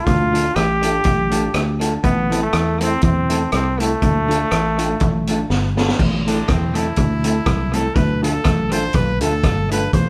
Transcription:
0.06 D2 F4, kick, closed hi-hat
0.32 A3 D4 F4 A4, closed hi-hat
0.56 A1 G4, cross-stick, closed hi-hat
0.82 A3 D4 F4 A4, closed hi-hat
1.04 A1, kick, closed hi-hat
1.30 A3 D4 F4 A4, closed hi-hat
1.54 D2, cross-stick, closed hi-hat
1.80 A3 D4 F4 A4, closed hi-hat
2.04 A1 B3, kick, closed hi-hat
2.30 A3 C4 E4 A4, closed hi-hat
2.43 A3
2.53 E2, cross-stick, closed hi-hat
2.80 A3 C4 E4 A4, closed hi-hat
3.01 E2 C4, kick, closed hi-hat
3.29 A3 C4 E4 A4, closed hi-hat
3.52 C2 C4, cross-stick, closed hi-hat
3.79 A3 C4 E4 A4, closed hi-hat
4.02 D2, kick, closed hi-hat
4.28 A3 D4 F4 A4, closed hi-hat
4.51 A1, cross-stick, closed hi-hat
4.78 A3 D4 F4 A4, closed hi-hat
5.00 A1, kick, closed hi-hat
5.27 A3 D4 F4 A4, closed hi-hat
5.50 G1, snare
5.77 A3 D4 F4 A4, snare
5.88 snare
5.99 A1, kick, crash
6.26 A3 C4 D4 E4 A4, closed hi-hat
6.48 E2 C4, kick, cross-stick, closed hi-hat
6.74 A3 C4 E4 A4, closed hi-hat
6.78 E4
6.96 D2, kick, closed hi-hat
7.24 A3 C4 E4 A4, closed hi-hat
7.46 C2, kick, cross-stick, closed hi-hat
7.73 A3 C4 E4 A4, closed hi-hat
7.95 D2 B4, kick, closed hi-hat
8.22 A3 D4 F4 A4, closed hi-hat
8.44 A1, kick, cross-stick, closed hi-hat
8.71 A3 D4 F4 A4 C5, closed hi-hat
8.93 B1 B4, kick, closed hi-hat
9.21 D2 A3 D4 F4 A4, closed hi-hat
9.43 G1, kick, cross-stick, closed hi-hat
9.71 A3 D4 F4 A4 B4, closed hi-hat
9.93 A1 C5, kick, closed hi-hat

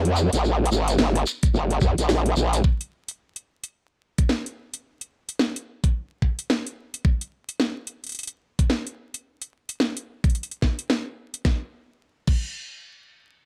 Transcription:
Already playing: F2
0.05 closed hi-hat
0.16 shekere
0.33 A#1, closed hi-hat, shekere
0.44 shekere
0.66 closed hi-hat
0.71 G#1, shekere
0.88 closed hi-hat, shekere
0.98 G#1, snare, shekere
1.15 cross-stick, closed hi-hat
1.27 shekere
1.43 kick, closed hi-hat, shekere
1.54 G#1, shekere
1.70 closed hi-hat
1.81 F2, kick, shekere
1.98 A#1, closed hi-hat, shekere
2.09 snare, shekere
2.26 closed hi-hat
2.36 A#1, shekere
2.53 closed hi-hat, shekere
2.64 kick
2.81 closed hi-hat
3.08 closed hi-hat
3.36 closed hi-hat
3.64 closed hi-hat
4.18 kick, closed hi-hat
4.29 snare
4.46 closed hi-hat
4.74 closed hi-hat
5.01 closed hi-hat
5.29 closed hi-hat
5.39 snare
5.56 closed hi-hat
5.84 kick, closed hi-hat
6.22 kick
6.39 closed hi-hat
6.50 snare
6.67 closed hi-hat
6.94 closed hi-hat
7.05 kick
7.21 closed hi-hat
7.49 closed hi-hat
7.60 snare
7.87 closed hi-hat
8.04 closed hi-hat
8.07 closed hi-hat
8.09 closed hi-hat
8.12 closed hi-hat
8.15 closed hi-hat
8.19 closed hi-hat
8.23 closed hi-hat
8.27 closed hi-hat
8.59 kick, closed hi-hat
8.70 snare
8.87 closed hi-hat
9.14 closed hi-hat
9.42 closed hi-hat
9.69 closed hi-hat
9.80 snare
9.97 closed hi-hat
10.24 kick, closed hi-hat
10.30 closed hi-hat
10.35 closed hi-hat
10.43 closed hi-hat
10.51 closed hi-hat
10.62 kick, snare
10.79 closed hi-hat
10.90 snare
11.34 closed hi-hat
11.45 kick, snare
12.27 kick, crash

